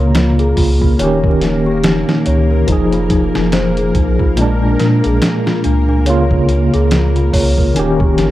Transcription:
Already playing: C#2 C#3 A#3 F4 A#4 C#5
0.15 F4, snare, closed hi-hat
0.39 G#4, closed hi-hat
0.57 C#2 F4, kick, open hi-hat
0.81 F4, kick
0.99 D#1 D#3 C#4 C#5, closed hi-hat
1.03 G4
1.24 A#4, kick
1.41 D#4, snare, closed hi-hat
1.66 G4
1.84 D#4, snare, closed hi-hat
2.09 D#4, snare
2.26 C#2 C#5, closed hi-hat
2.51 A#4
2.67 F1 F3 D#4, kick, closed hi-hat
2.72 G#4
2.92 F4, closed hi-hat
3.10 D#4, kick, closed hi-hat
3.35 F1 D#4, snare
3.52 C5, snare, closed hi-hat
3.77 G#4, closed hi-hat
3.95 A#1 D#4, kick, closed hi-hat
4.19 F4, kick
4.37 A#2 G#3 D4, closed hi-hat
4.42 D4
4.62 D4
4.79 A#2 A#4, snare, closed hi-hat
5.04 A#1 G#4, closed hi-hat
5.22 D4, snare, closed hi-hat
5.46 F4, snare
5.64 C#2 D4, closed hi-hat
5.89 D4
6.05 C#3 A#3 C#5, closed hi-hat
6.10 F4
6.31 A#4, kick
6.49 F4, closed hi-hat
6.74 C#2 G#4, closed hi-hat
6.91 F4, snare, closed hi-hat
7.16 F4, closed hi-hat
7.33 C#2 C#5, kick, open hi-hat
7.58 A#4, kick
7.74 D#1 D#3 C#4 D#4, closed hi-hat
7.79 G4
8.00 G4, kick
8.18 G1 D#4, snare, closed hi-hat

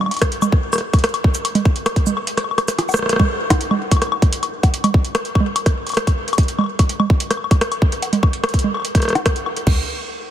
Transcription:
0.01 low conga, high woodblock
0.04 low conga
0.06 low conga, high woodblock
0.09 closed hi-hat, low conga, high woodblock
0.14 closed hi-hat
0.17 closed hi-hat, high woodblock
0.19 cross-stick, closed hi-hat
0.22 kick, closed hi-hat, high woodblock
0.32 closed hi-hat
0.42 low conga, cabasa, high woodblock
0.52 kick
0.73 cross-stick, cabasa, high woodblock
0.75 cross-stick
0.78 cross-stick, closed hi-hat
0.93 kick, closed hi-hat, high woodblock
0.99 closed hi-hat
1.04 cross-stick, closed hi-hat
1.09 closed hi-hat
1.14 closed hi-hat, high woodblock
1.24 kick
1.35 closed hi-hat, cabasa
1.45 closed hi-hat, high woodblock
1.55 closed hi-hat, low conga
1.65 kick
1.76 closed hi-hat
1.86 cross-stick, closed hi-hat, high woodblock
1.96 kick, closed hi-hat
2.07 low conga, cabasa
2.17 high woodblock
2.27 closed hi-hat
2.37 cross-stick, closed hi-hat, high woodblock
2.44 high woodblock
2.51 high woodblock
2.58 cross-stick, closed hi-hat, high woodblock
2.68 cross-stick, closed hi-hat, cabasa
2.79 cross-stick, closed hi-hat
2.89 cabasa, high woodblock
2.91 cross-stick, cabasa
2.94 cabasa
2.96 cross-stick, cabasa
3.02 cross-stick
3.06 cross-stick
3.09 cross-stick, closed hi-hat
3.13 cross-stick
3.16 kick, cross-stick, low conga, high woodblock
3.50 kick, cross-stick, closed hi-hat
3.61 closed hi-hat
3.71 low conga, high woodblock
3.91 kick, closed hi-hat, high woodblock
3.97 high woodblock
4.02 cross-stick, closed hi-hat, high woodblock
4.07 high woodblock
4.12 high woodblock
4.22 kick, closed hi-hat
4.33 closed hi-hat
4.43 closed hi-hat, high woodblock
4.63 kick, closed hi-hat, high woodblock
4.74 closed hi-hat
4.84 closed hi-hat, low conga, high woodblock
4.94 kick
5.05 closed hi-hat
5.15 cross-stick, closed hi-hat, high woodblock
5.25 closed hi-hat
5.35 kick, high woodblock
5.40 low conga
5.56 closed hi-hat, high woodblock
5.66 kick, cross-stick, closed hi-hat
5.87 closed hi-hat, high woodblock
5.89 closed hi-hat, high woodblock
5.92 closed hi-hat, high woodblock
5.94 cross-stick, closed hi-hat
5.97 closed hi-hat
6.07 kick, closed hi-hat, high woodblock
6.28 closed hi-hat
6.33 closed hi-hat, high woodblock
6.38 kick, closed hi-hat
6.43 closed hi-hat
6.48 closed hi-hat
6.59 low conga, high woodblock
6.61 high woodblock
6.79 kick, closed hi-hat, high woodblock
6.89 closed hi-hat
7.00 low conga, high woodblock
7.10 kick
7.20 closed hi-hat
7.31 cross-stick, closed hi-hat, high woodblock
7.37 high woodblock
7.44 high woodblock
7.51 kick, closed hi-hat, high woodblock
7.61 cross-stick, closed hi-hat
7.72 closed hi-hat, high woodblock
7.82 kick
7.92 closed hi-hat
8.02 closed hi-hat, high woodblock
8.13 closed hi-hat, low conga
8.23 kick, high woodblock
8.33 closed hi-hat
8.44 cross-stick, closed hi-hat, high woodblock
8.49 closed hi-hat
8.54 kick, closed hi-hat
8.59 closed hi-hat
8.64 low conga
8.74 high woodblock
8.77 high woodblock
8.80 high woodblock
8.82 closed hi-hat, high woodblock
8.95 kick, cross-stick, closed hi-hat
8.97 cross-stick
9.00 cross-stick, closed hi-hat
9.03 cross-stick
9.05 cross-stick
9.08 cross-stick, closed hi-hat
9.10 cross-stick
9.13 cross-stick
9.15 cross-stick, closed hi-hat, high woodblock
9.26 kick, cross-stick, closed hi-hat
9.36 closed hi-hat
9.46 high woodblock
9.57 closed hi-hat
9.67 kick, floor tom, crash

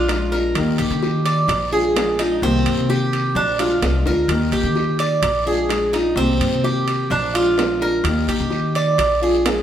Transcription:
Already playing: A#1 F4
0.08 F3 G#3 D4 F4, high bongo, low bongo, high timbale, short guiro
0.32 G#3 D4 F4 A#4, high bongo, short guiro
0.55 D#2 D#3 A#3 D#4 G4, high bongo, high timbale, long guiro
0.78 A#1 G4, high bongo, high timbale
0.90 D#3
1.03 high bongo, short guiro
1.26 D5, high timbale, short guiro
1.48 A#1, muted nylon-string guitar stroke, high bongo, high timbale, long guiro
1.73 G#3 D4 F4 G#4, high bongo
1.94 F3 G#3 D4 F4, high bongo, low bongo, high timbale, low timbale, short guiro
2.19 G#3 D4 D#4 F4, high bongo, high timbale, short guiro
2.41 C2 C3 D#3 A#3 C4 G4, high bongo, long guiro
2.66 G2, high timbale
2.77 C3
2.89 G4, high bongo, short guiro
3.13 high bongo, high timbale, short guiro
3.35 A#1 D4, muted nylon-string guitar stroke, high bongo, long guiro
3.59 G#3 D4 F4, high bongo, high timbale
3.82 C2 F3 G#3 D4, high timbale, low timbale, short guiro
4.06 D2 G#3 D4 F4 A#4, low bongo, short guiro
4.28 D#2 D#3 A#3 D#4 G4, high bongo, high timbale, long guiro
4.52 A#1 G4, high bongo, high timbale
4.63 D#3
4.76 high bongo, short guiro
4.99 D5, high timbale, short guiro
5.22 A#1, muted nylon-string guitar stroke, high bongo, high timbale, long guiro
5.46 G#3 D4 F4 G#4, high bongo
5.69 F3 G#3 D4 F4, high bongo, low bongo, high timbale, short guiro
5.93 G#3 D4 D#4 F4, high bongo, high timbale, short guiro
6.15 C2 C3 D#3 A#3 C4 G4, high bongo, long guiro
6.40 G2, high timbale
6.51 C3
6.64 G4, high bongo, short guiro
6.87 high bongo, high timbale, short guiro
7.10 A#1 D4, muted nylon-string guitar stroke, high bongo, long guiro
7.34 G#3 D4 F4, high bongo, high timbale
7.57 F3 G#3 D4 F4, high bongo, low bongo, high timbale, low timbale, short guiro
7.80 G#3 D4 F4 A#4, high bongo, short guiro
8.04 D#2 D#3 A#3 D#4 G4, high bongo, high timbale, long guiro
8.27 A#1 G4, high bongo, high timbale
8.40 D#3
8.50 high bongo, short guiro
8.75 D5, high timbale, short guiro
8.98 A#1, muted nylon-string guitar stroke, high bongo, high timbale, long guiro
9.22 G#3 D4 F4 G#4, high bongo
9.44 F3 G#3 D4 F4, high bongo, low bongo, high timbale, low timbale, short guiro

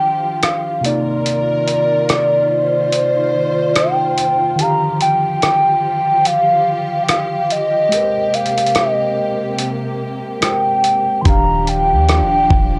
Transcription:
Already playing: D#3 F3 D4 F4 G4 F5 G5
0.43 F5, cross-stick, closed hi-hat
0.81 C3 D#3 A#3 A#4, closed hi-hat
0.86 D#4 D5
1.26 closed hi-hat
1.68 closed hi-hat
2.09 cross-stick, closed hi-hat
2.51 C5
2.92 closed hi-hat
3.76 G5, cross-stick, closed hi-hat
4.18 closed hi-hat
4.56 D3 D#3 F3 G4, closed hi-hat
4.61 G4 F5 A#5
5.01 G5, closed hi-hat
5.42 cross-stick, closed hi-hat
6.25 F5, closed hi-hat
7.04 G5
7.09 F5, cross-stick, closed hi-hat
7.50 D#5, closed hi-hat
7.89 C3 G#3 A#3 G4, closed hi-hat
7.94 A#4 B4
8.03 C5
8.34 F5, closed hi-hat
8.46 closed hi-hat
8.58 closed hi-hat
8.66 closed hi-hat
8.75 D#5, cross-stick, closed hi-hat
9.59 closed hi-hat
10.41 G#3 G4 A#4 C5 G5, cross-stick, closed hi-hat
10.84 closed hi-hat
11.21 D#3 D4 C6
11.25 D#1 F3 D4 G4 A#5, kick, closed hi-hat
11.29 F5
11.67 G5, closed hi-hat
11.92 D#2
12.09 cross-stick, closed hi-hat
12.21 D#1
12.50 D#1, kick

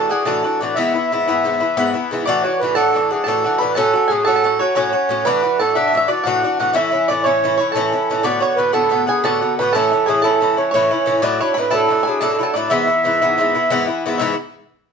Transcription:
Already playing: A2 E3 A4 A5
0.09 E3 D4 F#4 G#4 G#5
0.25 A2 E3 D4 F#4 A4 A5
0.44 E3 D4 F#4
0.59 A2 E3 D4 D5
0.63 F#4
0.75 G#2 E3 B3 E4 E5
0.94 E3 B3 E4
1.11 G#2 E3 B3 E4
1.28 G#2 E3 B3 E4
1.44 G#2 E3 B3 E4
1.60 E3 B3 E4
1.77 G#2 E3 B3 E4
1.94 E3 B3 E4
2.11 G#2 E3 B3 E4
2.25 A2 E3 D4 F#4 D5
2.43 D4 F#4 C#5
2.47 E3
2.59 A2 E3 B4
2.64 D4 F#4
2.75 A2 E3 D4 F#4 A4 A5
2.94 A2 E3 D4 F#4
3.11 E3 D4 F#4 G#4
3.24 A2 A4 A5
3.28 E3 D4 F#4
3.44 E3 D4 F#4
3.58 A2 E3 B4 B5
3.62 D4 F#4
3.75 A2 F#3 C#4 F#4 A4 A5
3.94 F#3 C#4 F#4
4.08 A2 F#3 C#4 G#4 G#5
4.13 F#4
4.25 A2 F#3 C#4 F#4 A4 A5
4.36 A5
4.44 A2 F#3 C#4 F#4 A5
4.59 F#3 C#4 F#4 C#5
4.75 A2 F#3 C#4 F#4 C#5
4.93 F#3 C#4 F#4
5.09 A2 F#3 C#4 F#4
5.25 A2 E3 D4 F#4 B4 B5
5.42 E3 D4 F#4
5.59 A2 E3 D4 F#4 A4 A5
5.75 A2 E3 D4 F#4 E5
5.87 E5
5.92 A2 E3 D4 F#4
5.97 E5
6.08 E3 D4 F#4 D5
6.24 A2 E3 D4 F#4 F#5
6.43 E3 D4 F#4
6.59 A2 E3 D4 F#4 F#5
6.74 A2 E3 C#4 E4 E5
6.91 E3 C#4 E4
7.08 A2 E3 C#4 D5
7.12 E4
7.23 A2 E3 C#4 E4 C#5
7.44 A2 E3 C#4 E4
7.57 C#4 E4 C#5
7.62 E3
7.72 A2 E3 A4 A5
7.76 C#4 E4
7.92 E3 C#4 E4
8.10 A2 E3 C#4 E4
8.23 A2 D3 B3 F#4 D5
8.40 D3 B3 F#4 C#5
8.56 A2 D3 B3 F#4 B4
8.73 A2 D3 B3 F#4 A4 A5
8.89 A2 D3 B3 F#4
9.07 D3 B3 F#4 G#4 G#5
9.23 A2 D3 B3 F#4 A4 A5
9.41 D3 B3 F#4
9.59 A2 D3 B3 F#4 B4 B5
9.72 A2 E3 C#4 E4 A4 A5
9.92 E3 C#4 E4
10.06 A2 E3 C#4 E4 G#4 G#5
10.22 A2 E3 C#4 E4 A4 A5
10.41 A2 E3 C#4 E4
10.57 E3 C#4 E4 C#5
10.71 A2 E3 C#4 C#5
10.75 E4
10.91 E3 C#4 E4
11.06 A2 E3 C#4 E4
11.22 A2 F#3 D4 E4 D5
11.41 F#3 D4 E4 C#5
11.54 A2 F#3 B5
11.58 D4 E4 B4
11.70 A2 F#3 D4 E4 A4 A5
11.89 A2 F#3 D4 E4
12.03 E4 G#5
12.07 F#3 D4 G#4
12.21 A2 F#3 D4 E4 A4 A5
12.33 A4
12.39 F#3 D4 E4
12.43 A4 A5
12.54 A2 F#3 D4 E4 D5
12.70 G#2 E3 B3 E4 E5
12.87 E3 B3 E4
13.04 G#2 E3 B3 E4
13.22 G#2 E3 B3 E4
13.38 G#2 E3 B3 E4
13.55 E3 B3 E4
13.70 G#2 E3 B3 E4
13.87 E3 B3 E4
14.06 G#2 E3 B3 E4
14.18 G#2 E3 B3 E5
14.23 E4

